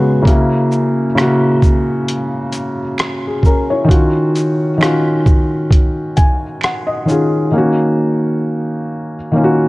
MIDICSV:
0, 0, Header, 1, 3, 480
1, 0, Start_track
1, 0, Key_signature, -6, "minor"
1, 0, Tempo, 909091
1, 136, Time_signature, 4, 2, 24, 8
1, 5113, End_track
2, 0, Start_track
2, 0, Title_t, "Felt piano"
2, 0, Program_c, 0, 0
2, 0, Control_c, 0, 64, 127
2, 0, Note_on_c, 0, 49, 75
2, 0, Note_on_c, 0, 56, 68
2, 0, Note_on_c, 0, 59, 69
2, 0, Note_on_c, 0, 66, 81
2, 109, Note_off_c, 0, 49, 0
2, 115, Note_off_c, 0, 56, 0
2, 119, Note_off_c, 0, 59, 0
2, 119, Note_on_c, 0, 49, 81
2, 125, Note_off_c, 0, 66, 0
2, 130, Note_on_c, 0, 58, 81
2, 139, Note_on_c, 0, 64, 75
2, 143, Control_c, 0, 64, 0
2, 152, Note_on_c, 0, 66, 83
2, 250, Control_c, 0, 64, 127
2, 556, Note_off_c, 0, 49, 0
2, 561, Note_off_c, 0, 58, 0
2, 566, Note_off_c, 0, 64, 0
2, 572, Note_off_c, 0, 66, 0
2, 608, Note_on_c, 0, 49, 83
2, 618, Note_on_c, 0, 58, 74
2, 629, Note_on_c, 0, 64, 67
2, 640, Note_on_c, 0, 66, 92
2, 1468, Note_off_c, 0, 49, 0
2, 1474, Note_off_c, 0, 58, 0
2, 1479, Note_off_c, 0, 64, 0
2, 1484, Note_off_c, 0, 66, 0
2, 1727, Note_on_c, 0, 68, 63
2, 1819, Note_off_c, 0, 68, 0
2, 1825, Note_on_c, 0, 70, 69
2, 1828, Note_on_c, 0, 61, 55
2, 1950, Note_off_c, 0, 70, 0
2, 1952, Note_off_c, 0, 61, 0
2, 1954, Note_on_c, 0, 73, 68
2, 1956, Note_on_c, 0, 64, 50
2, 2030, Note_on_c, 0, 51, 84
2, 2040, Note_on_c, 0, 61, 63
2, 2050, Note_on_c, 0, 65, 72
2, 2061, Note_on_c, 0, 66, 89
2, 2063, Control_c, 0, 64, 0
2, 2151, Control_c, 0, 64, 127
2, 2181, Note_off_c, 0, 73, 0
2, 2182, Note_off_c, 0, 64, 0
2, 2471, Note_off_c, 0, 51, 0
2, 2476, Note_off_c, 0, 61, 0
2, 2481, Note_off_c, 0, 65, 0
2, 2487, Note_off_c, 0, 66, 0
2, 2521, Note_on_c, 0, 51, 80
2, 2533, Note_on_c, 0, 61, 67
2, 2543, Note_on_c, 0, 65, 70
2, 2554, Note_on_c, 0, 66, 83
2, 3256, Note_on_c, 0, 80, 73
2, 3385, Note_off_c, 0, 51, 0
2, 3391, Note_off_c, 0, 61, 0
2, 3396, Note_off_c, 0, 65, 0
2, 3401, Note_off_c, 0, 66, 0
2, 3479, Note_off_c, 0, 80, 0
2, 3507, Note_on_c, 0, 78, 64
2, 3626, Note_on_c, 0, 75, 67
2, 3628, Note_off_c, 0, 78, 0
2, 3724, Note_on_c, 0, 51, 65
2, 3735, Note_on_c, 0, 61, 64
2, 3746, Note_on_c, 0, 65, 66
2, 3755, Note_on_c, 0, 68, 80
2, 3944, Note_off_c, 0, 51, 0
2, 3950, Note_off_c, 0, 61, 0
2, 3952, Note_off_c, 0, 75, 0
2, 3955, Note_off_c, 0, 65, 0
2, 3960, Note_off_c, 0, 68, 0
2, 3968, Note_on_c, 0, 51, 72
2, 3978, Note_on_c, 0, 58, 67
2, 3984, Control_c, 0, 64, 0
2, 3988, Note_on_c, 0, 61, 69
2, 4001, Note_on_c, 0, 66, 85
2, 4065, Control_c, 0, 64, 127
2, 4828, Note_off_c, 0, 51, 0
2, 4833, Note_off_c, 0, 58, 0
2, 4839, Note_off_c, 0, 61, 0
2, 4845, Note_off_c, 0, 66, 0
2, 4919, Note_on_c, 0, 51, 70
2, 4928, Note_on_c, 0, 58, 66
2, 4941, Note_on_c, 0, 61, 65
2, 4950, Note_on_c, 0, 65, 65
2, 4982, Note_off_c, 0, 65, 0
2, 4985, Note_on_c, 0, 66, 91
2, 5113, Note_off_c, 0, 51, 0
2, 5113, Note_off_c, 0, 58, 0
2, 5113, Note_off_c, 0, 61, 0
2, 5113, Note_off_c, 0, 66, 0
2, 5113, End_track
3, 0, Start_track
3, 0, Title_t, "Drums"
3, 134, Note_on_c, 9, 36, 109
3, 145, Note_on_c, 9, 42, 84
3, 187, Note_off_c, 9, 36, 0
3, 198, Note_off_c, 9, 42, 0
3, 379, Note_on_c, 9, 82, 45
3, 431, Note_off_c, 9, 82, 0
3, 620, Note_on_c, 9, 26, 65
3, 624, Note_on_c, 9, 37, 93
3, 629, Note_on_c, 9, 42, 65
3, 673, Note_off_c, 9, 26, 0
3, 677, Note_off_c, 9, 37, 0
3, 682, Note_off_c, 9, 42, 0
3, 857, Note_on_c, 9, 36, 84
3, 858, Note_on_c, 9, 82, 43
3, 910, Note_off_c, 9, 36, 0
3, 911, Note_off_c, 9, 82, 0
3, 1100, Note_on_c, 9, 42, 73
3, 1153, Note_off_c, 9, 42, 0
3, 1334, Note_on_c, 9, 42, 47
3, 1334, Note_on_c, 9, 82, 47
3, 1387, Note_off_c, 9, 42, 0
3, 1387, Note_off_c, 9, 82, 0
3, 1574, Note_on_c, 9, 26, 64
3, 1580, Note_on_c, 9, 42, 58
3, 1584, Note_on_c, 9, 37, 102
3, 1627, Note_off_c, 9, 26, 0
3, 1633, Note_off_c, 9, 42, 0
3, 1636, Note_off_c, 9, 37, 0
3, 1811, Note_on_c, 9, 36, 73
3, 1820, Note_on_c, 9, 82, 45
3, 1863, Note_off_c, 9, 36, 0
3, 1873, Note_off_c, 9, 82, 0
3, 2053, Note_on_c, 9, 36, 108
3, 2065, Note_on_c, 9, 42, 82
3, 2106, Note_off_c, 9, 36, 0
3, 2117, Note_off_c, 9, 42, 0
3, 2300, Note_on_c, 9, 42, 44
3, 2300, Note_on_c, 9, 82, 45
3, 2352, Note_off_c, 9, 42, 0
3, 2352, Note_off_c, 9, 82, 0
3, 2540, Note_on_c, 9, 26, 66
3, 2548, Note_on_c, 9, 37, 91
3, 2553, Note_on_c, 9, 42, 62
3, 2592, Note_off_c, 9, 26, 0
3, 2601, Note_off_c, 9, 37, 0
3, 2606, Note_off_c, 9, 42, 0
3, 2778, Note_on_c, 9, 36, 89
3, 2780, Note_on_c, 9, 82, 40
3, 2831, Note_off_c, 9, 36, 0
3, 2832, Note_off_c, 9, 82, 0
3, 3013, Note_on_c, 9, 36, 90
3, 3022, Note_on_c, 9, 42, 72
3, 3066, Note_off_c, 9, 36, 0
3, 3075, Note_off_c, 9, 42, 0
3, 3257, Note_on_c, 9, 42, 45
3, 3257, Note_on_c, 9, 82, 49
3, 3261, Note_on_c, 9, 36, 91
3, 3310, Note_off_c, 9, 42, 0
3, 3310, Note_off_c, 9, 82, 0
3, 3314, Note_off_c, 9, 36, 0
3, 3490, Note_on_c, 9, 26, 66
3, 3503, Note_on_c, 9, 42, 60
3, 3507, Note_on_c, 9, 37, 99
3, 3543, Note_off_c, 9, 26, 0
3, 3556, Note_off_c, 9, 42, 0
3, 3559, Note_off_c, 9, 37, 0
3, 3742, Note_on_c, 9, 82, 45
3, 3794, Note_off_c, 9, 82, 0
3, 5113, End_track
0, 0, End_of_file